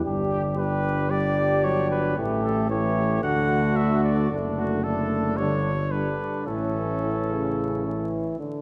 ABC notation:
X:1
M:4/4
L:1/8
Q:1/4=112
K:D
V:1 name="Trumpet"
z G B2 d2 c B | z A c2 f2 e d | z F A2 c2 B2 | A6 z2 |]
V:2 name="Flugelhorn"
G2 G2 G4 | G2 G2 F4 | D2 D2 D z D2 | C6- C z |]
V:3 name="French horn"
D2 D2 D4 | A,2 A,2 A,4 | A,2 A,2 G, z G,2 | E,6- E, z |]
V:4 name="Euphonium" clef=bass
G,2 G,2 G,2 F,2 | E,2 E,2 D,4 | D,2 D,2 D, z D,2 | A,,2 A,, C,2 E,2 D, |]
V:5 name="Tuba" clef=bass
G,,,8 | A,,,4 D,,4 | F,,,4 G,,,3 z | A,,,6- A,,, z |]